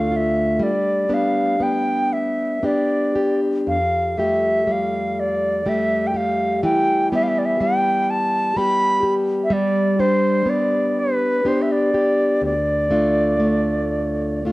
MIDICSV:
0, 0, Header, 1, 3, 480
1, 0, Start_track
1, 0, Tempo, 985222
1, 292, Time_signature, 3, 2, 24, 8
1, 776, Tempo, 1029160
1, 2216, Tempo, 975610
1, 3656, Tempo, 953895
1, 5096, Tempo, 985222
1, 6536, Tempo, 1047120
1, 7039, End_track
2, 0, Start_track
2, 0, Title_t, "Flute"
2, 0, Program_c, 0, 73
2, 0, Note_on_c, 0, 77, 61
2, 80, Note_on_c, 0, 76, 60
2, 87, Note_off_c, 0, 77, 0
2, 308, Note_on_c, 0, 74, 62
2, 315, Note_off_c, 0, 76, 0
2, 554, Note_on_c, 0, 77, 58
2, 561, Note_off_c, 0, 74, 0
2, 791, Note_on_c, 0, 79, 59
2, 798, Note_off_c, 0, 77, 0
2, 1026, Note_on_c, 0, 76, 56
2, 1033, Note_off_c, 0, 79, 0
2, 1272, Note_on_c, 0, 74, 59
2, 1279, Note_off_c, 0, 76, 0
2, 1621, Note_off_c, 0, 74, 0
2, 1751, Note_on_c, 0, 77, 64
2, 1984, Note_on_c, 0, 76, 56
2, 1991, Note_off_c, 0, 77, 0
2, 2234, Note_on_c, 0, 77, 59
2, 2242, Note_off_c, 0, 76, 0
2, 2470, Note_on_c, 0, 74, 62
2, 2478, Note_off_c, 0, 77, 0
2, 2712, Note_on_c, 0, 76, 64
2, 2719, Note_off_c, 0, 74, 0
2, 2900, Note_on_c, 0, 79, 48
2, 2907, Note_off_c, 0, 76, 0
2, 2947, Note_on_c, 0, 77, 65
2, 2955, Note_off_c, 0, 79, 0
2, 3177, Note_off_c, 0, 77, 0
2, 3179, Note_on_c, 0, 79, 73
2, 3400, Note_off_c, 0, 79, 0
2, 3430, Note_on_c, 0, 76, 67
2, 3471, Note_on_c, 0, 77, 44
2, 3478, Note_off_c, 0, 76, 0
2, 3495, Note_on_c, 0, 76, 63
2, 3503, Note_off_c, 0, 77, 0
2, 3548, Note_on_c, 0, 74, 42
2, 3555, Note_off_c, 0, 76, 0
2, 3581, Note_on_c, 0, 76, 67
2, 3588, Note_off_c, 0, 74, 0
2, 3658, Note_on_c, 0, 79, 69
2, 3666, Note_off_c, 0, 76, 0
2, 3906, Note_on_c, 0, 81, 72
2, 3914, Note_off_c, 0, 79, 0
2, 4141, Note_on_c, 0, 83, 80
2, 4148, Note_off_c, 0, 81, 0
2, 4428, Note_off_c, 0, 83, 0
2, 4579, Note_on_c, 0, 76, 56
2, 4623, Note_on_c, 0, 74, 80
2, 4631, Note_off_c, 0, 76, 0
2, 4860, Note_on_c, 0, 72, 69
2, 4867, Note_off_c, 0, 74, 0
2, 5108, Note_on_c, 0, 74, 70
2, 5116, Note_off_c, 0, 72, 0
2, 5352, Note_on_c, 0, 71, 69
2, 5359, Note_off_c, 0, 74, 0
2, 5588, Note_on_c, 0, 72, 67
2, 5595, Note_off_c, 0, 71, 0
2, 5655, Note_on_c, 0, 76, 52
2, 5663, Note_off_c, 0, 72, 0
2, 5703, Note_on_c, 0, 74, 70
2, 5710, Note_off_c, 0, 76, 0
2, 6057, Note_off_c, 0, 74, 0
2, 6063, Note_on_c, 0, 74, 64
2, 6999, Note_off_c, 0, 74, 0
2, 7039, End_track
3, 0, Start_track
3, 0, Title_t, "Steel-string acoustic guitar"
3, 0, Program_c, 1, 25
3, 0, Note_on_c, 1, 38, 60
3, 0, Note_on_c, 1, 57, 44
3, 0, Note_on_c, 1, 62, 40
3, 0, Note_on_c, 1, 65, 43
3, 51, Note_off_c, 1, 65, 0
3, 57, Note_on_c, 1, 65, 45
3, 289, Note_off_c, 1, 38, 0
3, 290, Note_on_c, 1, 55, 54
3, 340, Note_off_c, 1, 57, 0
3, 341, Note_off_c, 1, 65, 0
3, 533, Note_off_c, 1, 62, 0
3, 533, Note_on_c, 1, 59, 37
3, 535, Note_on_c, 1, 62, 37
3, 537, Note_on_c, 1, 67, 40
3, 776, Note_off_c, 1, 59, 0
3, 780, Note_on_c, 1, 59, 38
3, 1253, Note_off_c, 1, 62, 0
3, 1254, Note_off_c, 1, 59, 0
3, 1259, Note_on_c, 1, 59, 38
3, 1259, Note_on_c, 1, 62, 38
3, 1262, Note_off_c, 1, 67, 0
3, 1264, Note_on_c, 1, 67, 43
3, 1502, Note_off_c, 1, 67, 0
3, 1504, Note_on_c, 1, 67, 41
3, 1744, Note_on_c, 1, 41, 52
3, 1758, Note_off_c, 1, 55, 0
3, 1790, Note_off_c, 1, 59, 0
3, 1790, Note_off_c, 1, 62, 0
3, 1979, Note_on_c, 1, 55, 35
3, 1984, Note_on_c, 1, 57, 37
3, 1987, Note_off_c, 1, 67, 0
3, 1989, Note_on_c, 1, 67, 40
3, 2210, Note_off_c, 1, 55, 0
3, 2212, Note_on_c, 1, 55, 37
3, 2694, Note_off_c, 1, 55, 0
3, 2694, Note_off_c, 1, 57, 0
3, 2696, Note_on_c, 1, 55, 42
3, 2697, Note_off_c, 1, 67, 0
3, 2699, Note_on_c, 1, 67, 44
3, 2700, Note_on_c, 1, 57, 41
3, 2932, Note_off_c, 1, 67, 0
3, 2934, Note_on_c, 1, 67, 45
3, 3175, Note_off_c, 1, 41, 0
3, 3176, Note_on_c, 1, 52, 60
3, 3222, Note_off_c, 1, 57, 0
3, 3415, Note_off_c, 1, 55, 0
3, 3417, Note_on_c, 1, 55, 40
3, 3419, Note_on_c, 1, 59, 39
3, 3420, Note_off_c, 1, 67, 0
3, 3422, Note_on_c, 1, 67, 44
3, 3653, Note_off_c, 1, 55, 0
3, 3655, Note_on_c, 1, 55, 45
3, 4137, Note_off_c, 1, 55, 0
3, 4139, Note_on_c, 1, 55, 45
3, 4141, Note_off_c, 1, 59, 0
3, 4143, Note_on_c, 1, 59, 44
3, 4145, Note_off_c, 1, 67, 0
3, 4147, Note_on_c, 1, 67, 52
3, 4370, Note_off_c, 1, 67, 0
3, 4372, Note_on_c, 1, 67, 53
3, 4608, Note_off_c, 1, 52, 0
3, 4610, Note_off_c, 1, 55, 0
3, 4610, Note_on_c, 1, 55, 66
3, 4854, Note_off_c, 1, 59, 0
3, 4855, Note_off_c, 1, 67, 0
3, 4856, Note_on_c, 1, 62, 44
3, 4857, Note_on_c, 1, 67, 46
3, 5090, Note_on_c, 1, 59, 45
3, 5568, Note_off_c, 1, 59, 0
3, 5573, Note_off_c, 1, 67, 0
3, 5574, Note_on_c, 1, 59, 46
3, 5575, Note_off_c, 1, 62, 0
3, 5577, Note_on_c, 1, 62, 42
3, 5579, Note_on_c, 1, 67, 45
3, 5808, Note_off_c, 1, 67, 0
3, 5814, Note_on_c, 1, 67, 43
3, 6044, Note_on_c, 1, 38, 57
3, 6053, Note_off_c, 1, 55, 0
3, 6099, Note_off_c, 1, 67, 0
3, 6100, Note_off_c, 1, 59, 0
3, 6283, Note_on_c, 1, 57, 40
3, 6286, Note_off_c, 1, 62, 0
3, 6288, Note_on_c, 1, 62, 38
3, 6290, Note_on_c, 1, 65, 40
3, 6515, Note_off_c, 1, 57, 0
3, 6521, Note_on_c, 1, 57, 40
3, 7001, Note_off_c, 1, 57, 0
3, 7004, Note_off_c, 1, 62, 0
3, 7007, Note_on_c, 1, 57, 37
3, 7008, Note_off_c, 1, 65, 0
3, 7009, Note_on_c, 1, 62, 37
3, 7013, Note_on_c, 1, 65, 40
3, 7039, Note_off_c, 1, 38, 0
3, 7039, Note_off_c, 1, 57, 0
3, 7039, Note_off_c, 1, 62, 0
3, 7039, Note_off_c, 1, 65, 0
3, 7039, End_track
0, 0, End_of_file